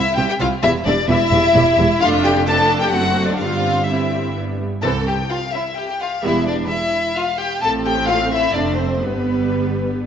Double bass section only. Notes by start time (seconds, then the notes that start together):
0.17 C2
0.41 C2
0.64 E1
0.87 E1
1.10 E1
1.32 E1
1.56 E1
1.79 E1
2.02 F1
2.94 F#1
3.41 G1
4.83 C2
6.24 E1
7.62 A1
8.55 F1
9.03 G1